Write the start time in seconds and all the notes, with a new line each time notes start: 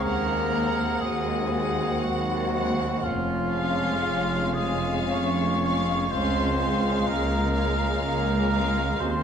Already playing: G#4
0.00 D#2 G#3 A#3 C4 A#4 A#5
0.04 F#5
0.52 G#3 C4 F#5
1.01 D#2 G#4 G#5
1.05 D#2 G#3 F#4
1.54 G#3 C4 F#5
2.02 D#2 F#3 F#4 F#5
2.06 D#2
2.55 G#3 C4 F#5
3.02 F1 F2 F3 C#4 F4 F5
3.53 G#3 C#4 F5
4.02 F1 F2
4.54 G#3 G#4 F5 G#5
4.59 C#4
5.10 F1 F2 C#4 C#5 C#6
5.64 G#3 C#4 F5
6.09 C#2 G#3 C4 C#4 C5 F5 C6
6.61 G#3 C#4 F5
7.08 C#2 A#3 A#4 A#5
7.55 G#3 C#4 F5
8.02 C#2 A#3 A#4 A#5
8.51 G#3 C#4 F5
8.99 D#2 G#3 C4 F#4 C5 C6